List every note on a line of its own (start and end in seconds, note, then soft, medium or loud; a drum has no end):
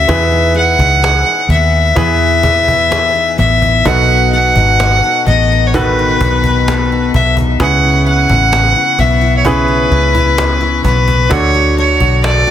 0.00 0.18 C#4 medium
0.00 0.10 D4 medium
0.00 0.18 F#4 medium
0.00 0.18 A4 medium
0.00 0.55 E5 loud
0.08 0.75 E2 loud
0.08 1.45 E3 medium
0.08 1.86 B3 medium
0.08 1.86 E4 medium
0.08 1.87 G#4 medium
0.08 1.87 B4 medium
0.08 cajon bass loud
0.32 0.78 D#4 medium
0.55 1.01 G#4 medium
0.55 1.46 F#5 loud
0.78 1.22 C#2 medium
0.78 1.26 D#4 medium
0.78 cajon bass medium
1.02 2.42 G#4 medium
1.02 cajon slap loud
1.26 2.00 D#4 medium
1.48 1.92 D#2 medium
1.48 3.38 B3 medium
1.48 3.35 E5 loud
1.48 cajon bass medium
1.95 3.34 E2 loud
1.95 3.95 E3 medium
1.95 3.75 B3 medium
1.95 3.76 E4 medium
1.95 3.76 G#4 medium
1.95 3.76 B4 medium
1.95 cajon bass loud
2.43 2.89 G#4 medium
2.43 cajon bass medium
2.68 cajon bass medium
2.91 3.95 G#4 medium
2.91 cajon slap loud
3.15 3.62 D#4 soft
3.38 3.82 A1 medium
3.38 4.36 B3 medium
3.38 3.88 E5 medium
3.38 cajon bass medium
3.62 4.10 D#4 medium
3.62 cajon bass medium
3.85 4.52 B1 loud
3.85 5.23 B2 medium
3.85 5.74 B2 medium
3.85 5.64 D#4 medium
3.85 5.65 F#4 medium
3.85 5.65 A4 medium
3.85 5.65 B4 medium
3.85 4.32 F#5 loud
3.85 cajon bass loud
4.10 4.56 D#4 medium
4.33 4.79 A4 medium
4.33 5.23 F#5 loud
4.56 5.00 G#1 medium
4.56 5.03 D#4 medium
4.56 cajon bass medium
4.80 6.21 A4 medium
4.80 cajon slap loud
5.04 5.51 D#4 medium
5.26 6.17 A1 medium
5.26 7.14 B3 medium
5.26 5.68 D#5 medium
5.26 cajon bass medium
5.52 5.98 D#4 medium
5.67 5.76 C#5 medium
5.74 7.70 B2 medium
5.74 7.51 D#3 medium
5.74 7.51 F#4 medium
5.74 7.51 A4 medium
5.74 7.14 B4 loud
5.74 7.52 B4 medium
5.74 cajon bass loud
5.99 6.45 D#4 medium
6.21 7.10 B1 medium
6.21 6.67 A4 medium
6.21 cajon bass medium
6.44 6.91 D#4 medium
6.44 cajon bass medium
6.68 7.70 A4 medium
6.68 cajon slap loud
6.92 7.37 D#4 medium
7.14 7.57 B1 medium
7.14 8.98 B3 medium
7.14 7.35 E5 medium
7.14 cajon bass medium
7.37 7.70 D#4 medium
7.37 cajon bass medium
7.60 8.25 C#2 loud
7.60 9.44 C#3 medium
7.60 8.95 C#3 medium
7.60 9.36 C#4 medium
7.60 9.36 E4 medium
7.60 9.36 G#4 medium
7.60 9.36 B4 medium
7.60 8.04 F#5 loud
7.60 cajon bass loud
7.84 8.28 E4 medium
8.07 8.51 B4 medium
8.07 9.01 F#5 loud
8.29 8.73 A1 medium
8.29 8.75 E4 medium
8.29 cajon bass medium
8.52 9.91 B4 medium
8.52 cajon slap loud
8.76 9.20 E4 medium
8.99 9.88 B1 medium
8.99 10.83 B3 medium
8.99 9.37 E5 medium
8.99 cajon bass medium
9.21 9.67 E4 medium
9.38 9.49 C#5 medium
9.45 11.31 C#3 medium
9.45 11.21 C#4 medium
9.45 11.22 E4 medium
9.45 11.22 G#4 medium
9.45 11.22 B4 medium
9.45 10.84 B4 medium
9.45 cajon bass medium
9.68 10.13 E4 medium
9.91 10.80 C#2 loud
9.91 10.36 B4 medium
10.14 10.59 E4 medium
10.14 cajon bass medium
10.38 11.40 B4 medium
10.38 cajon slap loud
10.61 11.06 E4 medium
10.84 11.28 B1 medium
10.84 11.40 B3 medium
10.84 11.34 B4 medium
10.84 cajon bass medium
11.08 11.40 E4 medium
11.08 cajon bass medium
11.29 11.97 D2 loud
11.29 12.51 D3 medium
11.29 12.51 D4 medium
11.29 12.51 F#4 medium
11.29 12.51 A4 medium
11.29 11.78 C#5 loud
11.29 cajon bass loud
11.54 11.99 F#4 medium
11.78 12.23 A4 medium
11.78 12.21 C#5 medium
12.00 12.44 B1 medium
12.00 12.46 F#4 medium
12.00 cajon bass medium
12.24 12.51 A4 medium
12.24 12.51 D5 loud
12.24 cajon slap loud
12.47 12.51 F#4 medium